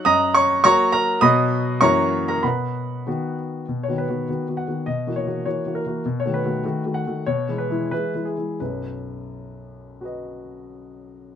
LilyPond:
<<
  \new Staff \with { instrumentName = "Grand piano" } { \time 2/4 \key b \major \tempo 4 = 98 << { <dis'' ais'' dis'''>8 <cis'' cis'''>8 <cis'' ais'' cis'''>8 <ais' ais''>8 | <dis'' b'' dis'''>4 <cis'' ais'' cis'''>8. <ais' ais''>16 | <b' fis'' b''>4. r8 | r16 cis''16 b'4 fis''8 |
dis''8 cis''8 cis''8 ais'8 | r16 cis''16 b'4 fis''8 | cis''8 b'8 b'8 gis'8 | b'2~ |
b'2 | } \\ { r2 | r2 | r2 | r2 |
r2 | r2 | r2 | r2 |
<fis' b' dis''>2 | } >> }
  \new Staff \with { instrumentName = "Grand piano" } { \time 2/4 \key b \major fis,4 <fis ais fis'>4 | <b, fis b fis'>4 <fis, e ais fis'>4 | b,4 <dis b fis'>4 | \tuplet 3/2 { b,8 <dis b fis'>8 <dis b fis'>8 <dis b fis'>8 <dis b fis'>8 <dis b fis'>8 } |
\tuplet 3/2 { b,8 <e ais fis'>8 <e ais fis'>8 <e ais fis'>8 <e ais fis'>8 <e ais fis'>8 } | \tuplet 3/2 { b,8 <dis a fis'>8 <dis a fis'>8 <dis a fis'>8 <dis a fis'>8 <dis a fis'>8 } | \tuplet 3/2 { b,8 <e gis e'>8 <e gis e'>8 <e gis e'>8 <e gis e'>8 <e gis e'>8 } | <b,, fis,>2~ |
<b,, fis,>2 | }
>>